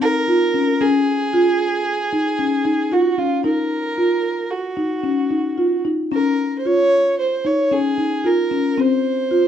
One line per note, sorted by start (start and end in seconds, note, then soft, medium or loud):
0.01 0.21 D#4 medium
0.01 0.83 A#4 medium
0.28 0.47 F4 medium
0.54 0.74 C#4 medium
0.81 1.19 C#4 medium
0.81 2.94 G#4 medium
1.33 1.72 F4 medium
2.13 2.32 D#4 medium
2.39 2.58 C#4 medium
2.65 2.85 D#4 medium
2.92 3.11 F4 medium
2.92 3.20 F#4 medium
3.18 3.37 C#4 medium
3.18 3.44 F4 medium
3.44 3.83 D#4 medium
3.44 4.52 A#4 medium
3.98 4.36 F4 medium
4.51 5.85 F#4 medium
4.77 4.97 D#4 medium
5.03 5.23 C#4 medium
5.31 5.50 D#4 medium
5.58 5.78 F4 medium
5.85 6.05 D#4 medium
6.12 6.51 C#4 medium
6.12 6.55 A#4 medium
6.59 6.68 C5 medium
6.65 7.05 F4 medium
6.65 7.19 C#5 medium
7.19 7.48 C5 medium
7.45 7.64 D#4 medium
7.45 7.74 C#5 medium
7.71 7.91 C#4 medium
7.71 8.27 G#4 medium
7.98 8.18 D#4 medium
8.24 8.44 F4 medium
8.24 8.82 A#4 medium
8.51 8.71 C#4 medium
8.78 9.17 C4 medium
8.78 9.48 C5 medium
9.31 9.48 F4 medium